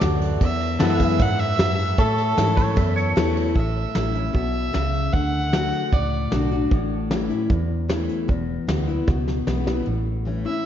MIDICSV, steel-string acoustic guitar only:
0, 0, Header, 1, 2, 480
1, 0, Start_track
1, 0, Key_signature, 3, "major"
1, 0, Tempo, 393959
1, 501, Time_signature, 4, 2, 24, 8
1, 12984, End_track
2, 0, Start_track
2, 0, Title_t, "Steel-string acoustic guitar"
2, 0, Program_c, 0, 25
2, 11, Note_on_c, 0, 42, 93
2, 471, Note_off_c, 0, 42, 0
2, 507, Note_on_c, 0, 40, 102
2, 965, Note_on_c, 0, 52, 94
2, 982, Note_on_c, 0, 56, 89
2, 987, Note_on_c, 0, 59, 88
2, 991, Note_on_c, 0, 64, 98
2, 1414, Note_off_c, 0, 40, 0
2, 1427, Note_off_c, 0, 52, 0
2, 1436, Note_off_c, 0, 56, 0
2, 1438, Note_off_c, 0, 59, 0
2, 1440, Note_off_c, 0, 64, 0
2, 1473, Note_on_c, 0, 42, 88
2, 1921, Note_off_c, 0, 42, 0
2, 1932, Note_on_c, 0, 44, 93
2, 2390, Note_off_c, 0, 44, 0
2, 2414, Note_on_c, 0, 45, 82
2, 2889, Note_on_c, 0, 52, 81
2, 2915, Note_on_c, 0, 61, 95
2, 2918, Note_on_c, 0, 64, 93
2, 3326, Note_off_c, 0, 45, 0
2, 3348, Note_off_c, 0, 52, 0
2, 3361, Note_off_c, 0, 61, 0
2, 3362, Note_off_c, 0, 64, 0
2, 3364, Note_on_c, 0, 40, 90
2, 3848, Note_on_c, 0, 52, 96
2, 3859, Note_on_c, 0, 57, 88
2, 3859, Note_on_c, 0, 61, 88
2, 3873, Note_on_c, 0, 64, 106
2, 4281, Note_off_c, 0, 40, 0
2, 4307, Note_off_c, 0, 52, 0
2, 4313, Note_off_c, 0, 57, 0
2, 4313, Note_off_c, 0, 61, 0
2, 4320, Note_off_c, 0, 64, 0
2, 4325, Note_on_c, 0, 45, 75
2, 4805, Note_on_c, 0, 52, 47
2, 4815, Note_on_c, 0, 57, 50
2, 4817, Note_on_c, 0, 61, 60
2, 4827, Note_on_c, 0, 64, 54
2, 5026, Note_off_c, 0, 64, 0
2, 5040, Note_on_c, 0, 64, 61
2, 5041, Note_off_c, 0, 52, 0
2, 5046, Note_off_c, 0, 57, 0
2, 5047, Note_off_c, 0, 61, 0
2, 5064, Note_on_c, 0, 61, 46
2, 5243, Note_off_c, 0, 45, 0
2, 5276, Note_on_c, 0, 47, 68
2, 5278, Note_off_c, 0, 64, 0
2, 5290, Note_off_c, 0, 61, 0
2, 5742, Note_off_c, 0, 47, 0
2, 5763, Note_on_c, 0, 49, 76
2, 6226, Note_off_c, 0, 49, 0
2, 6244, Note_on_c, 0, 50, 78
2, 6710, Note_off_c, 0, 50, 0
2, 6725, Note_on_c, 0, 50, 53
2, 6737, Note_on_c, 0, 57, 57
2, 6748, Note_on_c, 0, 62, 50
2, 6753, Note_on_c, 0, 66, 56
2, 7188, Note_off_c, 0, 50, 0
2, 7194, Note_off_c, 0, 57, 0
2, 7199, Note_off_c, 0, 62, 0
2, 7202, Note_off_c, 0, 66, 0
2, 7222, Note_on_c, 0, 45, 75
2, 7699, Note_on_c, 0, 50, 51
2, 7705, Note_on_c, 0, 57, 62
2, 7715, Note_on_c, 0, 62, 58
2, 7723, Note_on_c, 0, 66, 65
2, 7920, Note_off_c, 0, 66, 0
2, 7929, Note_off_c, 0, 50, 0
2, 7933, Note_off_c, 0, 57, 0
2, 7935, Note_on_c, 0, 66, 54
2, 7938, Note_off_c, 0, 62, 0
2, 7957, Note_on_c, 0, 62, 44
2, 8133, Note_off_c, 0, 45, 0
2, 8168, Note_off_c, 0, 66, 0
2, 8178, Note_on_c, 0, 45, 84
2, 8179, Note_off_c, 0, 62, 0
2, 8659, Note_on_c, 0, 52, 56
2, 8668, Note_on_c, 0, 57, 54
2, 8675, Note_on_c, 0, 61, 58
2, 8680, Note_on_c, 0, 64, 61
2, 8871, Note_off_c, 0, 64, 0
2, 8886, Note_on_c, 0, 64, 64
2, 8890, Note_off_c, 0, 52, 0
2, 8895, Note_off_c, 0, 57, 0
2, 8898, Note_off_c, 0, 61, 0
2, 8913, Note_on_c, 0, 61, 47
2, 9091, Note_off_c, 0, 45, 0
2, 9124, Note_off_c, 0, 64, 0
2, 9134, Note_on_c, 0, 40, 79
2, 9137, Note_off_c, 0, 61, 0
2, 9607, Note_on_c, 0, 52, 55
2, 9621, Note_on_c, 0, 57, 57
2, 9625, Note_on_c, 0, 61, 57
2, 9636, Note_on_c, 0, 64, 62
2, 10050, Note_off_c, 0, 40, 0
2, 10070, Note_off_c, 0, 52, 0
2, 10077, Note_off_c, 0, 57, 0
2, 10079, Note_off_c, 0, 61, 0
2, 10085, Note_off_c, 0, 64, 0
2, 10089, Note_on_c, 0, 40, 82
2, 10567, Note_on_c, 0, 52, 55
2, 10576, Note_on_c, 0, 56, 49
2, 10588, Note_on_c, 0, 59, 53
2, 10596, Note_on_c, 0, 64, 58
2, 10796, Note_off_c, 0, 64, 0
2, 10805, Note_off_c, 0, 52, 0
2, 10809, Note_off_c, 0, 56, 0
2, 10811, Note_on_c, 0, 64, 53
2, 10815, Note_off_c, 0, 59, 0
2, 10834, Note_on_c, 0, 59, 43
2, 11008, Note_off_c, 0, 40, 0
2, 11047, Note_off_c, 0, 64, 0
2, 11055, Note_on_c, 0, 47, 71
2, 11058, Note_off_c, 0, 59, 0
2, 11537, Note_on_c, 0, 52, 48
2, 11548, Note_on_c, 0, 56, 54
2, 11559, Note_on_c, 0, 59, 59
2, 11562, Note_on_c, 0, 64, 62
2, 11755, Note_off_c, 0, 64, 0
2, 11770, Note_off_c, 0, 52, 0
2, 11770, Note_on_c, 0, 64, 49
2, 11775, Note_off_c, 0, 56, 0
2, 11781, Note_off_c, 0, 59, 0
2, 11799, Note_on_c, 0, 59, 44
2, 11971, Note_off_c, 0, 47, 0
2, 12006, Note_off_c, 0, 64, 0
2, 12010, Note_on_c, 0, 45, 68
2, 12021, Note_off_c, 0, 59, 0
2, 12492, Note_on_c, 0, 52, 54
2, 12504, Note_on_c, 0, 57, 53
2, 12510, Note_on_c, 0, 61, 50
2, 12517, Note_on_c, 0, 64, 57
2, 12722, Note_off_c, 0, 64, 0
2, 12728, Note_off_c, 0, 52, 0
2, 12734, Note_off_c, 0, 57, 0
2, 12736, Note_off_c, 0, 61, 0
2, 12737, Note_on_c, 0, 64, 50
2, 12766, Note_on_c, 0, 61, 43
2, 12928, Note_off_c, 0, 45, 0
2, 12970, Note_off_c, 0, 64, 0
2, 12984, Note_off_c, 0, 61, 0
2, 12984, End_track
0, 0, End_of_file